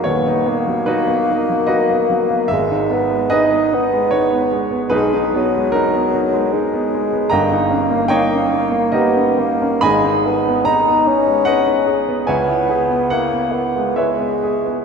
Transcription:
<<
  \new Staff \with { instrumentName = "Grand piano" } { \time 3/4 \key gis \minor \tempo 4 = 74 cis''4 <dis' fis' b'>4 <fis' b' dis''>4 | e''4 <gis' b' dis''>4 cis''4 | <dis' gis' b'>4 ais'4 r4 | <dis'' g'' ais''>4 <cis'' dis'' g''>4 <g' ais' dis''>4 |
<dis'' gis'' b''>4 ais''4 <b' dis'' fis''>4 | <cis'' e'' gis''>4 fis''4 <b' cis'' e''>4 | }
  \new Staff \with { instrumentName = "Grand piano" } { \time 3/4 \key gis \minor <dis,, dis,>16 dis'16 b16 fis8 b16 dis'16 fis16 dis'16 b16 fis16 b16 | gis,,16 dis'16 b16 gis16 dis'16 b16 dis'16 gis16 dis'16 b16 gis16 b16 | b,,16 dis'16 b16 gis16 dis'16 b16 dis'16 gis16 dis'16 b16 gis16 b16 | <g,, g,>16 dis'16 cis'16 ais16 dis'16 cis'16 dis'16 ais16 dis'16 cis'16 ais16 cis'16 |
<gis,, gis,>16 dis'16 gis'16 b16 dis'16 b16 dis'16 gis16 dis'16 b16 gis'16 b16 | cis,16 e'16 gis'16 b16 e'16 b16 e'16 gis16 e'16 b16 gis'16 b16 | }
  \new Staff \with { instrumentName = "Bassoon" } { \time 3/4 \key gis \minor b8 ais2~ ais8 | gis8 b8 dis'8 b4 r8 | gis8 fis4. gis4 | ais2 b8 ais8 |
gis8 b8 dis'8 cis'4 r8 | b4 ais8 b8 gis4 | }
>>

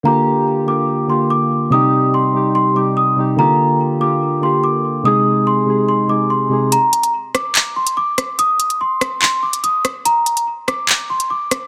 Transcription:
<<
  \new Staff \with { instrumentName = "Celesta" } { \time 4/4 \key g \phrygian \tempo 4 = 144 bes''4 r8 d'''4 c'''8 d'''4 | ees'''4 c'''4 c'''8 d'''8 ees'''8 r8 | bes''4 r8 d'''4 c'''8 d'''4 | ees'''4 c'''4 c'''8 d'''8 c'''4 |
bes''4 r8 d'''4 c'''8 d'''4 | ees'''4 c'''4 c'''8 d'''8 ees'''8 r8 | bes''4 r8 d'''4 c'''8 d'''4 | }
  \new Staff \with { instrumentName = "Synth keys" } { \time 4/4 \key g \phrygian <d bes f' g'>4~ <d bes f' g'>16 r16 <d bes f' g'>4 <d bes f' g'>4~ <d bes f' g'>16 r16 | <c g ees' g'>4~ <c g ees' g'>16 r16 <c g ees' g'>4 <c g ees' g'>4 <c g ees' g'>8 | <d bes f' g'>4~ <d bes f' g'>16 r16 <d bes f' g'>4 <d bes f' g'>4~ <d bes f' g'>16 r16 | <c aes ees' aes'>4~ <c aes ees' aes'>16 r16 <c aes ees' aes'>4 <c aes ees' aes'>4 <c aes ees' aes'>8 |
r1 | r1 | r1 | }
  \new DrumStaff \with { instrumentName = "Drums" } \drummode { \time 4/4 r4 r4 r4 r4 | r4 r4 r4 r4 | r4 r4 r4 r4 | r4 r4 r4 r4 |
hh8 hh16 hh16 r8 <hh ss>8 <hc hh>8. hh16 r8 <hh ss>8 | hh8 hh16 hh16 r8 <hh ss>8 hc8. hh16 hh8 <hh ss>8 | hh8 hh16 hh16 r8 <hh ss>8 <hc hh>8. hh16 r8 <hh ss>8 | }
>>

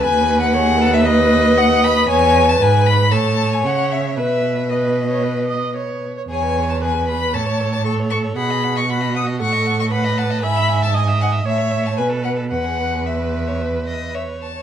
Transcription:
<<
  \new Staff \with { instrumentName = "Violin" } { \time 4/4 \key e \major \tempo 4 = 115 gis''8. fis''4 e''16 dis''4 fis''8 b''8 | gis''8. a''16 gis''8 b''8 a''8. gis''16 fis''8 e''8 | e''4 dis''2 r4 | gis''8. a''16 gis''8 b''8 a''8. a''16 cis'''8 cis'''8 |
b''8. cis'''16 b''8 dis'''8 cis'''8. cis'''16 b''8 a''8 | b''8. a''16 gis''8 fis''8 e''8. a''16 gis''8 fis''8 | fis''4 e''2 e''8 a''8 | }
  \new Staff \with { instrumentName = "Violin" } { \time 4/4 \key e \major b'4 gis'8 a'8 b'2 | b'2 cis''2 | b'2.~ b'8 r8 | gis'16 b'16 gis'16 b'16 gis'16 b'16 gis'16 b'16 a'16 cis''16 a'16 cis''16 a'16 cis''16 a'16 cis''16 |
fis''16 dis''16 fis''16 dis''16 fis''16 dis''16 fis''16 dis''16 fis''16 dis''16 fis''16 dis''16 fis''16 dis''16 fis''16 dis''16 | gis''16 e''16 gis''16 e''16 gis''16 e''16 gis''16 e''16 e''16 cis''16 e''16 cis''16 b'16 a'16 b'16 a'16 | b'16 gis'16 b'16 gis'16 b'8. cis''16 b'8 dis''8 cis''8. cis''16 | }
  \new Staff \with { instrumentName = "Viola" } { \time 4/4 \key e \major b'4 cis''8 b'4. dis''4 | cis''4 b'4 a'4 cis''4 | b'4 b'8. cis''16 b'8 dis''8 cis''8. cis''16 | cis''4 b'4 cis''4 a'4 |
gis'4 fis'4 a'4 b'4 | e''4 dis''4 cis''4 b'4 | b'2.~ b'8 r8 | }
  \new Staff \with { instrumentName = "Cello" } { \clef bass \time 4/4 \key e \major dis,1 | e,4 gis,4 a,4 cis4 | b,2.~ b,8 r8 | e,2 a,2 |
b,2 a,2 | gis,2 a,4 b,4 | e,2.~ e,8 r8 | }
>>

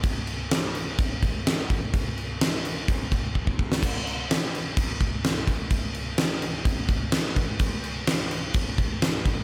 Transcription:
\new DrumStaff \with { instrumentName = "Drums" } \drummode { \time 4/4 \tempo 4 = 127 <cymc bd>8 cymc8 <cymc sn>8 cymc8 <cymc bd>8 <cymc bd>8 <cymc sn>8 <cymc bd>8 | <cymc bd>8 cymc8 <cymc sn>8 cymc8 <cymc bd>8 <cymc bd>8 bd16 bd16 bd16 sn16 | <cymc bd>8 cymc8 <cymc sn>8 cymc8 <cymc bd>8 <cymc bd>8 <cymc sn>8 <cymc bd>8 | <cymc bd>8 cymc8 <cymc sn>8 cymc8 <cymc bd>8 <cymc bd>8 <cymc sn>8 <cymc bd>8 |
<cymc bd>8 cymc8 <cymc sn>8 cymc8 <cymc bd>8 <cymc bd>8 <cymc sn>8 <cymc bd>8 | }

